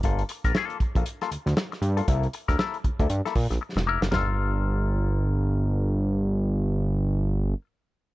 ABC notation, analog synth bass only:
X:1
M:4/4
L:1/16
Q:"Swing 16ths" 1/4=118
K:Gdor
V:1 name="Analog synth bass" clef=bass
G,,,2 z B,,, z2 B,,, B,,, z2 D,, D,, z2 G,,2 | C,,2 z D,, z2 D,, D,, G,, z B,, B,,, z E,,, F,,, ^F,,, | G,,,16- | G,,,16 |]